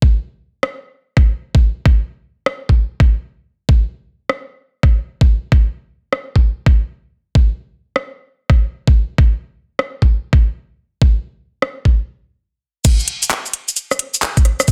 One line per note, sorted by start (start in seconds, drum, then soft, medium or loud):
0.02 kick loud
0.63 cross-stick medium
1.17 kick loud
1.17 cross-stick soft
1.55 kick loud
1.86 kick loud
2.46 cross-stick medium
2.69 kick medium
3.00 kick loud
3.69 kick loud
4.29 cross-stick medium
4.83 kick loud
4.83 cross-stick soft
5.21 kick loud
5.52 kick loud
6.13 cross-stick medium
6.36 kick medium
6.66 kick loud
7.35 kick loud
7.96 cross-stick medium
8.50 kick medium
8.50 cross-stick soft
8.87 kick loud
9.18 kick loud
9.79 cross-stick medium
10.02 kick medium
10.33 kick medium
11.02 kick loud
11.62 cross-stick medium
11.85 kick medium
12.85 kick loud
12.85 closed hi-hat medium
12.85 crash loud
12.85 shaker medium
13.00 shaker soft
13.08 closed hi-hat loud
13.23 closed hi-hat medium
13.23 shaker medium
13.30 clap loud
13.30 closed hi-hat medium
13.30 shaker medium
13.46 shaker soft
13.53 closed hi-hat loud
13.68 closed hi-hat soft
13.68 shaker medium
13.76 closed hi-hat medium
13.76 shaker soft
13.91 cross-stick medium
13.91 shaker soft
13.99 closed hi-hat loud
14.14 shaker medium
14.22 clap loud
14.22 closed hi-hat medium
14.22 shaker medium
14.37 kick loud
14.37 closed hi-hat medium
14.37 shaker soft
14.45 cross-stick soft
14.45 closed hi-hat medium
14.60 cross-stick medium
14.60 closed hi-hat soft
14.60 shaker medium
14.68 kick loud
14.68 closed hi-hat medium
14.68 shaker medium